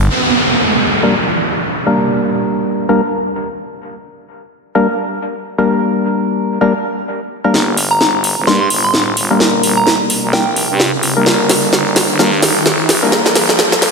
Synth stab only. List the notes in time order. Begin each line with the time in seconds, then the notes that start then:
1.03 G3 A#3 D4 A#4
1.86 G3 A#3 D4 A#4
2.89 G3 A#3 D4 A#4
4.75 G3 A#3 D4 A#4
5.58 G3 A#3 D4 A#4
6.61 G3 A#3 D4 A#4
7.44 G3 A#3 D4 A#4
8.47 G3 A#3 D4 A#4
9.30 G3 A#3 D4 A#4
10.33 G3 A#3 D4 A#4
11.17 G3 A#3 D4 A#4
12.19 G3 A#3 D4 A#4
13.03 G3 A#3 D4 A#4